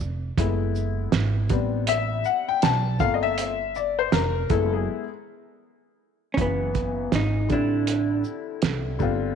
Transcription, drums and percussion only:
0.00 shaker
0.38 kick, closed hi-hat
0.75 shaker
1.12 snare, closed hi-hat
1.49 kick, closed hi-hat, shaker
1.87 closed hi-hat
2.24 shaker
2.62 snare, closed hi-hat
3.00 kick, shaker
3.38 closed hi-hat
3.75 shaker
4.12 snare, closed hi-hat
4.50 kick, closed hi-hat, shaker
6.37 kick, closed hi-hat
6.75 kick, closed hi-hat, shaker
7.12 snare, closed hi-hat
7.50 kick, closed hi-hat, shaker
7.87 closed hi-hat
8.24 shaker
8.62 snare, closed hi-hat
9.00 kick, shaker

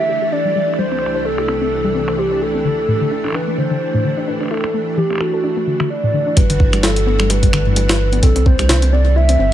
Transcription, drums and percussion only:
0.74 finger snap
0.92 finger snap
0.99 finger snap
1.06 finger snap
1.38 finger snap
1.48 finger snap
2.08 finger snap
3.24 finger snap
3.26 finger snap
3.28 finger snap
3.30 finger snap
3.32 finger snap
3.34 finger snap
4.41 finger snap
4.43 finger snap
4.46 finger snap
4.48 finger snap
4.51 finger snap
4.54 finger snap
4.57 finger snap
4.61 finger snap
4.64 finger snap
5.10 finger snap
5.13 finger snap
5.15 finger snap
5.18 finger snap
5.21 finger snap
5.80 finger snap
6.37 kick, closed hi-hat
6.50 closed hi-hat
6.60 kick
6.73 finger snap, closed hi-hat
6.83 snare, closed hi-hat
6.96 closed hi-hat
7.20 finger snap
7.30 closed hi-hat
7.43 kick, closed hi-hat
7.53 finger snap
7.76 closed hi-hat
7.89 finger snap, snare, closed hi-hat
8.13 closed hi-hat
8.23 kick, closed hi-hat
8.36 closed hi-hat
8.46 kick
8.59 finger snap, closed hi-hat
8.69 snare, closed hi-hat
8.82 closed hi-hat
9.29 closed hi-hat

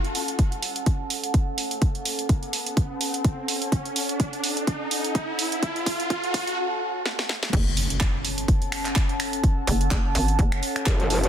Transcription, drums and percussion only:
0.04 closed hi-hat
0.15 open hi-hat
0.28 closed hi-hat
0.39 kick, closed hi-hat
0.52 closed hi-hat
0.62 open hi-hat
0.76 closed hi-hat
0.86 kick, closed hi-hat
1.10 open hi-hat
1.24 closed hi-hat
1.34 kick, closed hi-hat
1.58 open hi-hat
1.71 closed hi-hat
1.82 kick, closed hi-hat
1.95 closed hi-hat
2.05 open hi-hat
2.19 closed hi-hat
2.29 kick, closed hi-hat
2.43 closed hi-hat
2.53 open hi-hat
2.66 closed hi-hat
2.77 kick, closed hi-hat
3.01 open hi-hat
3.14 closed hi-hat
3.24 kick, closed hi-hat
3.48 open hi-hat
3.62 closed hi-hat
3.72 kick, closed hi-hat
3.85 closed hi-hat
3.96 open hi-hat
4.09 closed hi-hat
4.20 kick, closed hi-hat
4.33 closed hi-hat
4.44 open hi-hat
4.57 closed hi-hat
4.67 kick, closed hi-hat
4.91 open hi-hat
5.04 closed hi-hat
5.15 kick, closed hi-hat
5.39 open hi-hat
5.52 closed hi-hat
5.63 kick, closed hi-hat
5.76 closed hi-hat
5.86 kick, open hi-hat
6.00 closed hi-hat
6.10 kick, closed hi-hat
6.24 closed hi-hat
6.34 kick, open hi-hat
6.47 closed hi-hat
7.06 snare
7.19 snare
7.29 snare
7.43 snare
7.53 kick, closed hi-hat, crash
7.77 open hi-hat
7.90 closed hi-hat
8.01 kick, clap, closed hi-hat
8.25 open hi-hat
8.38 closed hi-hat
8.48 kick, closed hi-hat
8.62 closed hi-hat
8.72 finger snap, open hi-hat
8.85 clap, closed hi-hat
8.96 finger snap, kick, clap, closed hi-hat
9.09 closed hi-hat
9.20 finger snap, open hi-hat
9.33 closed hi-hat
9.44 kick, closed hi-hat
9.67 open hi-hat
9.81 closed hi-hat
9.91 kick, clap, closed hi-hat
10.15 open hi-hat
10.28 closed hi-hat
10.39 kick, closed hi-hat
10.52 finger snap, closed hi-hat
10.63 open hi-hat
10.76 finger snap, closed hi-hat
10.86 kick, clap, closed hi-hat
11.00 closed hi-hat
11.10 open hi-hat
11.24 closed hi-hat

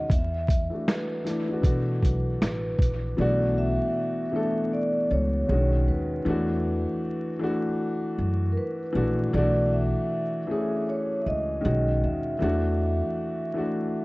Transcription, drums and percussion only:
0.10 kick, closed hi-hat
0.48 kick, closed hi-hat
0.88 finger snap, snare, closed hi-hat
1.26 snare, closed hi-hat
1.63 kick, closed hi-hat
2.03 kick, closed hi-hat
2.42 finger snap, snare, closed hi-hat
2.79 kick, closed hi-hat

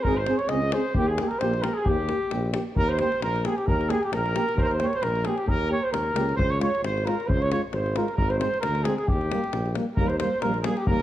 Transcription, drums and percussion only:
0.05 davul low
0.26 davul high
0.39 davul high
0.49 davul high
0.62 davul high
0.72 davul high
0.95 davul low
1.18 davul high
1.31 davul high
1.41 davul high
1.54 davul high
1.64 davul high
1.86 davul low
2.09 davul high
2.31 davul high
2.54 davul high
2.76 davul low
2.89 davul high
2.99 davul high
3.12 davul high
3.22 davul high
3.36 davul high
3.45 davul high
3.58 davul high
3.68 davul low
3.81 davul high
3.90 davul high
4.03 davul high
4.13 davul high
4.26 davul high
4.36 davul high
4.49 davul high
4.58 davul low
4.71 davul high
4.80 davul high
4.93 davul high
5.03 davul high
5.15 davul high
5.25 davul high
5.38 davul high
5.48 davul low
5.94 davul high
6.16 davul high
6.29 davul high
6.39 davul low
6.52 davul high
6.61 davul high
6.75 davul high
6.84 davul high
6.97 davul high
7.07 davul high
7.20 davul high
7.30 davul low
7.42 davul high
7.52 davul high
7.73 davul high
7.86 davul high
7.96 davul high
8.08 davul high
8.18 davul low
8.30 davul high
8.41 davul high
8.54 davul high
8.63 davul high
8.75 davul high
8.85 davul high
8.98 davul high
9.08 davul low
9.21 davul high
9.32 davul high
9.44 davul high
9.53 davul high
9.66 davul high
9.75 davul high
9.97 davul low
10.10 davul high
10.20 davul high
10.42 davul high
10.54 davul high
10.64 davul high
10.77 davul high
10.87 davul low

